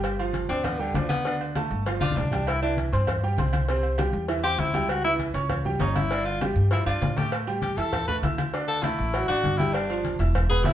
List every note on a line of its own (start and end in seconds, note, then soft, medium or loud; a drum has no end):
0.00 0.44 G1 medium
0.00 0.14 G3 medium
0.00 0.14 G4 medium
0.00 0.14 G5 medium
0.00 cowbell loud
0.04 high conga soft
0.04 low agogo loud
0.19 0.44 F3 medium
0.19 0.44 F4 medium
0.19 0.44 F5 medium
0.19 high conga soft
0.19 low agogo medium
0.33 cowbell medium
0.33 high conga medium
0.49 0.91 D2 loud
0.49 0.66 C4 loud
0.49 0.74 D4 medium
0.49 0.75 D5 medium
0.49 0.75 D6 medium
0.49 cowbell medium
0.49 high conga soft
0.64 0.81 B3 medium
0.64 cowbell loud
0.64 high conga soft
0.64 low conga medium
0.64 low agogo loud
0.79 0.97 D3 medium
0.79 0.92 G3 medium
0.79 0.92 G4 medium
0.79 0.93 G5 medium
0.79 high conga soft
0.94 1.65 D2 medium
0.94 1.08 F3 medium
0.94 1.20 D4 medium
0.94 1.20 D5 medium
0.94 1.20 D6 medium
0.94 cowbell medium
0.94 high conga medium
0.94 low timbale medium
0.94 low agogo medium
1.09 1.38 B3 loud
1.09 cowbell medium
1.09 high conga medium
1.09 low agogo loud
1.25 1.51 D3 medium
1.25 1.51 D4 medium
1.25 1.51 D5 medium
1.25 cowbell loud
1.25 high conga soft
1.40 high conga soft
1.40 low agogo medium
1.55 1.81 A3 medium
1.55 1.81 A4 medium
1.55 1.81 A5 medium
1.55 cowbell medium
1.55 high conga loud
1.55 low agogo loud
1.70 1.99 G1 loud
1.70 high conga soft
1.86 1.99 F3 medium
1.86 1.99 F4 medium
1.86 1.99 F5 medium
1.86 cowbell loud
1.86 high conga soft
1.86 low agogo medium
2.01 2.15 B1 medium
2.01 2.27 D4 medium
2.01 2.18 F4 loud
2.01 2.27 D5 medium
2.01 2.27 D6 medium
2.01 high conga loud
2.01 low agogo loud
2.11 high conga medium
2.16 2.87 C2 medium
2.16 2.49 D4 medium
2.16 cowbell medium
2.16 low timbale medium
2.21 low conga medium
2.31 2.57 G3 medium
2.31 2.57 G4 medium
2.31 2.57 G5 medium
2.31 cowbell medium
2.31 low conga medium
2.31 low agogo medium
2.47 2.62 E4 loud
2.47 cowbell loud
2.47 high conga soft
2.47 low agogo loud
2.62 2.87 E3 medium
2.62 2.76 D4 medium
2.62 2.87 E4 medium
2.62 2.88 E5 medium
2.62 high conga soft
2.62 low agogo medium
2.77 cowbell medium
2.77 high conga medium
2.92 3.35 G2 loud
2.92 3.17 C4 medium
2.92 3.18 C5 medium
2.92 3.18 C6 medium
2.92 cowbell medium
2.92 high conga soft
3.07 cowbell loud
3.07 high conga soft
3.07 low conga medium
3.07 low agogo loud
3.23 3.36 G3 medium
3.23 3.36 G4 medium
3.23 3.36 G5 medium
3.23 high conga soft
3.38 4.08 C2 loud
3.38 3.63 C4 medium
3.38 3.63 C5 medium
3.38 3.64 C6 medium
3.38 cowbell medium
3.38 high conga medium
3.38 low agogo medium
3.53 cowbell medium
3.53 high conga medium
3.53 low agogo loud
3.69 3.94 C3 medium
3.69 3.94 C4 medium
3.69 3.94 C5 medium
3.69 cowbell loud
3.83 high conga soft
3.83 low agogo medium
3.98 4.23 G3 medium
3.98 4.23 G4 medium
3.98 4.24 G5 medium
3.98 cowbell medium
3.98 high conga loud
3.98 low agogo loud
4.13 4.56 E2 loud
4.13 high conga soft
4.28 4.41 E3 medium
4.28 4.41 E4 medium
4.28 4.41 E5 medium
4.28 cowbell loud
4.28 high conga soft
4.28 low agogo medium
4.43 4.68 C4 medium
4.43 4.61 G4 loud
4.43 4.69 C5 medium
4.43 4.69 C6 medium
4.43 high conga soft
4.43 low agogo loud
4.58 5.29 C#2 medium
4.58 4.91 E4 loud
4.58 cowbell medium
4.58 high conga medium
4.74 4.99 G3 medium
4.74 4.99 G4 medium
4.74 4.99 G5 medium
4.74 cowbell medium
4.74 high conga medium
4.74 low agogo medium
4.89 5.04 F#4 loud
4.89 cowbell loud
4.89 high conga soft
4.89 low agogo loud
5.04 5.30 E3 medium
5.04 5.14 E4 loud
5.04 5.30 E4 medium
5.04 5.30 E5 medium
5.04 high conga soft
5.04 low agogo medium
5.19 cowbell medium
5.19 high conga medium
5.34 5.77 C#2 loud
5.34 5.60 C#4 medium
5.34 5.59 C#5 medium
5.34 5.60 C#6 medium
5.34 cowbell medium
5.34 high conga soft
5.49 cowbell loud
5.49 high conga soft
5.49 low conga medium
5.49 low agogo loud
5.65 5.78 G3 medium
5.65 5.78 G4 medium
5.65 5.78 G5 medium
5.65 high conga soft
5.65 low conga medium
5.79 6.50 G1 loud
5.79 6.06 C#4 medium
5.79 5.96 D#4 medium
5.79 6.06 C#5 medium
5.79 6.06 C#6 medium
5.79 cowbell medium
5.79 high conga medium
5.79 low timbale medium
5.79 low agogo medium
5.95 6.27 E4 loud
5.95 cowbell medium
5.95 high conga medium
5.95 low agogo loud
6.11 6.36 D3 medium
6.11 6.36 D4 medium
6.11 6.36 D5 medium
6.11 cowbell loud
6.11 high conga soft
6.25 6.41 F4 loud
6.25 high conga soft
6.25 low agogo medium
6.41 6.66 G3 medium
6.41 6.67 G4 medium
6.41 6.67 G5 medium
6.41 cowbell medium
6.41 high conga loud
6.41 low agogo loud
6.55 6.84 G2 loud
6.55 high conga soft
6.71 6.84 F3 medium
6.71 6.86 E4 medium
6.71 6.84 F4 medium
6.71 6.84 F5 medium
6.71 cowbell loud
6.71 high conga soft
6.71 low agogo medium
6.86 7.00 G2 medium
6.86 7.11 D4 medium
6.86 7.19 F4 loud
6.86 7.11 D5 medium
6.86 7.11 D6 medium
6.86 high conga soft
6.86 low agogo loud
7.01 7.72 A2 medium
7.01 cowbell medium
7.01 high conga medium
7.01 low timbale medium
7.16 7.41 A3 medium
7.16 7.32 G4 medium
7.16 7.42 A4 medium
7.16 7.42 A5 medium
7.16 cowbell medium
7.16 high conga medium
7.16 low agogo medium
7.32 cowbell loud
7.32 high conga soft
7.32 low agogo loud
7.47 7.72 G3 medium
7.47 7.72 G4 medium
7.47 7.72 G5 medium
7.47 high conga soft
7.47 low agogo medium
7.62 7.78 G4 medium
7.62 cowbell medium
7.62 high conga medium
7.77 8.19 E2 medium
7.77 8.02 E4 medium
7.77 8.07 A4 loud
7.77 8.02 E5 medium
7.77 8.03 E6 medium
7.77 cowbell medium
7.77 high conga soft
7.93 cowbell loud
7.93 high conga soft
7.93 low conga medium
7.93 low agogo loud
8.08 8.20 A3 medium
8.08 8.20 A4 medium
8.08 8.17 B4 loud
8.08 8.20 A5 medium
8.08 high conga soft
8.08 low conga medium
8.22 8.93 D2 medium
8.22 8.48 E4 medium
8.22 8.48 E5 medium
8.22 8.49 E6 medium
8.22 cowbell medium
8.22 high conga medium
8.22 low agogo medium
8.38 cowbell medium
8.38 high conga medium
8.38 low agogo loud
8.53 8.78 D3 medium
8.53 8.79 D4 medium
8.53 8.79 D5 medium
8.53 cowbell loud
8.53 high conga soft
8.68 8.85 A4 loud
8.68 high conga soft
8.68 low agogo medium
8.83 9.09 A3 medium
8.83 9.27 E4 medium
8.83 9.09 A4 medium
8.83 9.09 A5 medium
8.83 cowbell medium
8.83 high conga loud
8.83 low agogo loud
8.99 9.27 A1 loud
8.99 high conga soft
9.14 9.26 F#3 medium
9.14 9.26 F#4 medium
9.14 9.26 F#5 medium
9.14 cowbell loud
9.14 high conga soft
9.14 low agogo medium
9.28 9.43 A1 medium
9.28 9.54 D4 medium
9.28 9.59 F#4 loud
9.28 9.54 D5 medium
9.28 9.54 D6 medium
9.28 high conga soft
9.28 low agogo loud
9.44 10.14 G1 loud
9.44 cowbell medium
9.44 high conga loud
9.58 9.84 G3 medium
9.58 9.75 E4 loud
9.58 9.84 G4 medium
9.58 9.84 G5 medium
9.58 cowbell medium
9.58 high conga medium
9.58 low agogo medium
9.74 10.19 D4 medium
9.74 cowbell loud
9.74 high conga soft
9.74 low agogo loud
9.90 10.14 F3 medium
9.90 10.15 F4 medium
9.90 10.15 F5 medium
9.90 high conga soft
9.90 low agogo medium
10.05 cowbell medium
10.05 high conga medium
10.19 10.62 E1 loud
10.19 10.44 E4 medium
10.19 10.45 E5 medium
10.19 10.45 E6 medium
10.19 cowbell medium
10.19 high conga soft
10.35 cowbell loud
10.35 high conga soft
10.35 low conga medium
10.35 low agogo loud
10.49 10.63 B3 medium
10.49 10.66 G#4 loud
10.49 10.63 B4 medium
10.49 10.63 B5 medium
10.49 high conga soft
10.49 low conga medium
10.64 10.73 A1 medium
10.64 10.73 E4 medium
10.64 10.73 E5 medium
10.64 10.73 E6 medium
10.64 cowbell medium
10.64 high conga medium
10.64 low timbale medium
10.64 low agogo medium